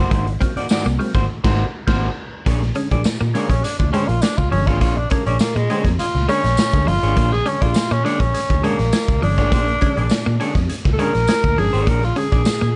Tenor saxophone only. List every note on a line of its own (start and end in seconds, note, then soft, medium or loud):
3.34 3.51 A#3 medium
3.49 3.65 C#4 medium
3.63 3.78 D4 medium
3.79 3.91 D4 medium
3.92 4.09 C#4 medium
4.07 4.23 F4 medium
4.22 4.39 D4 medium
4.37 4.50 F4 medium
4.51 4.68 C#4 medium
4.67 4.80 F4 medium
4.81 4.98 F4 medium
4.97 5.11 D4 medium
5.10 5.25 A#3 medium
5.26 5.39 C#4 medium
5.40 5.57 A#3 medium
5.56 5.85 G#3 medium
5.99 6.27 F4 medium
6.29 6.89 C#4 loud
6.87 7.34 F4 loud
7.33 7.49 G#4 loud
7.47 7.63 C#4 loud
7.62 7.93 F4 loud
7.92 8.06 C#4 loud
8.04 8.22 D4 loud
8.20 8.66 C#4 loud
8.64 9.23 A#3 loud
9.23 10.66 D4 loud
10.93 11.01 A4 medium
11.00 11.60 A#4 loud
11.59 11.90 G#4 loud
11.88 12.06 A#4 loud
12.05 12.20 F4 medium
12.18 12.76 G#4 medium